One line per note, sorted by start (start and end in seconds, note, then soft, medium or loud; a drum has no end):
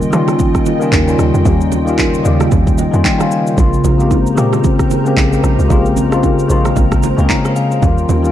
0.00 7.79 C#3 medium
0.00 0.11 D#3 medium
0.00 0.12 G3 medium
0.00 0.13 A#3 medium
0.00 0.14 C#4 medium
0.00 0.15 F4 medium
0.00 3.54 F4 medium
0.00 3.54 D#5 medium
0.00 3.54 G5 medium
0.00 shaker medium
0.11 0.65 D#3 medium
0.11 0.36 D#3 loud
0.11 0.65 G3 medium
0.11 0.66 A#3 medium
0.11 0.66 C#4 medium
0.11 0.67 F4 medium
0.11 cross-stick loud
0.11 shaker medium
0.28 cross-stick medium
0.28 low bongo medium
0.28 shaker soft
0.39 kick loud
0.39 low conga medium
0.39 shaker medium
0.55 kick loud
0.55 cross-stick medium
0.55 shaker medium
0.66 high bongo soft
0.66 low bongo medium
0.66 shaker medium
0.79 1.01 D#3 medium
0.79 1.01 G3 medium
0.79 1.02 A#3 medium
0.79 1.02 C#4 medium
0.79 shaker medium
0.83 1.03 F4 loud
0.92 1.15 D#2 loud
0.92 kick medium
0.92 clap medium
0.92 high bongo medium
0.92 shaker medium
1.06 1.38 D#3 medium
1.06 1.38 G3 medium
1.06 1.39 A#3 medium
1.06 1.39 C#4 medium
1.06 1.40 F4 medium
1.06 shaker medium
1.19 1.32 D#2 medium
1.19 cross-stick medium
1.19 shaker medium
1.34 1.44 F2 medium
1.34 shaker soft
1.43 2.21 D#2 loud
1.43 1.77 D#3 medium
1.43 1.78 G3 medium
1.43 1.78 A#3 medium
1.43 1.79 C#4 medium
1.43 1.79 D#4 medium
1.43 kick loud
1.43 low conga medium
1.43 shaker medium
1.61 shaker soft
1.72 low bongo medium
1.72 low conga medium
1.72 shaker medium
1.85 2.17 D#3 medium
1.85 2.18 G3 medium
1.85 2.18 A#3 medium
1.85 2.19 C#4 medium
1.85 2.19 F4 medium
1.85 shaker soft
1.98 kick medium
1.98 clap loud
1.98 high bongo medium
1.98 shaker medium
2.14 shaker medium
2.23 2.48 D#2 loud
2.23 2.77 D#3 medium
2.23 2.78 G3 medium
2.23 2.78 A#3 medium
2.23 2.79 C#4 medium
2.23 2.79 G4 medium
2.23 shaker medium
2.40 cross-stick loud
2.40 low bongo medium
2.40 shaker soft
2.51 2.88 D#2 medium
2.51 kick loud
2.51 low conga medium
2.51 shaker medium
2.67 kick medium
2.67 shaker medium
2.78 3.03 D#5 medium
2.78 high bongo soft
2.78 low bongo medium
2.78 shaker medium
2.91 3.03 F2 medium
2.91 3.13 D#3 medium
2.91 3.13 G3 medium
2.91 3.14 A#3 medium
2.91 3.14 C#4 medium
2.91 3.15 F4 loud
2.91 shaker medium
3.05 3.29 G5 medium
3.05 kick medium
3.05 clap medium
3.05 high bongo medium
3.05 shaker medium
3.18 3.50 D#3 medium
3.18 3.51 G3 medium
3.18 3.51 A#3 medium
3.18 3.52 C#4 medium
3.18 3.52 F4 medium
3.18 cross-stick medium
3.18 low bongo medium
3.18 shaker medium
3.31 3.56 G#5 medium
3.31 shaker medium
3.47 shaker medium
3.56 3.81 A#1 loud
3.56 3.90 C#3 medium
3.56 3.90 G#3 medium
3.56 3.91 A#3 medium
3.56 3.91 C4 medium
3.56 3.91 F4 medium
3.56 7.79 A#4 medium
3.56 7.79 C5 medium
3.56 7.79 A#5 medium
3.56 kick loud
3.56 low conga medium
3.56 shaker medium
3.73 shaker soft
3.84 4.30 A#1 loud
3.84 low conga medium
3.84 shaker loud
3.98 4.30 C#3 medium
3.98 4.30 G#3 medium
3.98 4.31 A#3 medium
3.98 4.31 C4 medium
3.98 4.32 G4 medium
3.98 shaker soft
4.11 kick medium
4.11 high bongo medium
4.11 shaker medium
4.26 shaker soft
4.35 4.60 A#2 loud
4.35 4.90 C#3 medium
4.35 4.90 G#3 medium
4.35 4.91 A#3 medium
4.35 4.91 C4 medium
4.35 4.92 G4 medium
4.35 cross-stick medium
4.35 shaker medium
4.53 cross-stick medium
4.53 low bongo medium
4.53 shaker medium
4.64 kick loud
4.64 low conga medium
4.64 shaker medium
4.79 kick loud
4.79 cross-stick medium
4.79 shaker medium
4.90 high bongo soft
4.90 low bongo medium
4.90 shaker medium
5.04 5.25 C#3 medium
5.04 5.26 G#3 medium
5.04 5.26 A#3 medium
5.04 5.27 C4 medium
5.04 5.27 G4 medium
5.04 shaker medium
5.17 5.40 A#1 loud
5.17 kick loud
5.17 clap medium
5.17 high bongo medium
5.17 shaker medium
5.30 5.62 C#3 medium
5.30 5.63 G#3 medium
5.30 5.63 A#3 medium
5.30 5.64 C4 medium
5.30 5.64 G4 medium
5.30 shaker medium
5.44 5.57 A#1 loud
5.44 cross-stick medium
5.44 shaker medium
5.59 5.69 C#2 medium
5.59 shaker soft
5.68 6.46 A#1 loud
5.68 6.02 C#3 medium
5.68 6.02 G#3 medium
5.68 6.03 A#3 medium
5.68 6.03 C4 medium
5.68 6.04 F4 medium
5.68 kick loud
5.68 low conga medium
5.68 shaker medium
5.86 shaker soft
5.97 low conga medium
5.97 shaker loud
6.10 6.42 C#3 medium
6.10 6.43 G#3 medium
6.10 6.43 A#3 medium
6.10 6.44 C4 medium
6.10 6.44 F4 medium
6.10 cross-stick loud
6.10 shaker soft
6.23 kick medium
6.23 high bongo medium
6.23 shaker medium
6.39 shaker medium
6.48 6.73 A#1 loud
6.48 7.02 C#3 medium
6.48 7.02 G#3 medium
6.48 7.03 A#3 medium
6.48 7.03 C4 medium
6.48 7.04 F4 loud
6.48 shaker medium
6.65 cross-stick medium
6.65 low bongo medium
6.65 shaker soft
6.76 7.13 A#1 loud
6.76 kick loud
6.76 low conga medium
6.76 shaker medium
6.92 kick loud
6.92 cross-stick loud
6.92 shaker medium
7.03 high bongo soft
7.03 low bongo medium
7.03 shaker medium
7.16 7.28 C#2 medium
7.16 7.38 C#3 medium
7.16 7.38 G#3 medium
7.16 7.39 A#3 medium
7.16 7.39 C4 medium
7.16 shaker soft
7.20 7.31 G#4 loud
7.29 7.44 C#5 medium
7.29 7.54 A#5 medium
7.29 kick medium
7.29 clap medium
7.29 high bongo medium
7.29 shaker medium
7.45 7.56 A#4 medium
7.45 cross-stick medium
7.45 shaker medium
7.56 7.71 G#4 medium
7.56 7.81 F5 medium
7.56 shaker medium
7.71 7.83 F4 medium
7.71 shaker soft
7.81 8.06 D#2 loud
7.81 8.14 D#3 medium
7.81 8.15 G3 medium
7.81 8.15 A#3 medium
7.81 8.32 C#4 medium
7.81 8.16 C#4 medium
7.81 8.32 F4 medium
7.81 8.16 F4 medium
7.81 8.32 D#5 medium
7.81 8.32 G5 medium
7.81 kick loud
7.81 low conga medium
7.81 shaker medium
7.98 shaker soft
8.09 8.32 D#2 loud
8.09 low conga medium
8.09 shaker medium
8.23 8.32 D#3 medium
8.23 8.32 G3 medium
8.23 8.32 A#3 medium
8.23 8.32 C#4 medium
8.23 8.32 F4 medium
8.23 shaker soft